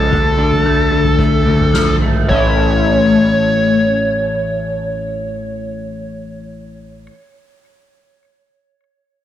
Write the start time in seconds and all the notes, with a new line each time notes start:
Already playing: C#2 C#3 F3 G#3 A4
0.12 D2 D3, kick, floor tom
0.38 D2 D4
0.52 floor tom
0.66 D2 A3
0.92 D2 D3
1.04 floor tom
1.19 D2 A3, kick
1.46 D2 D3, floor tom
1.60 mid tom
1.74 D2 F3, snare
1.88 floor tom
2.02 G#1 A3
2.29 A1 A2 E3 A3 C#4 C#5, kick, floor tom, crash
2.33 E4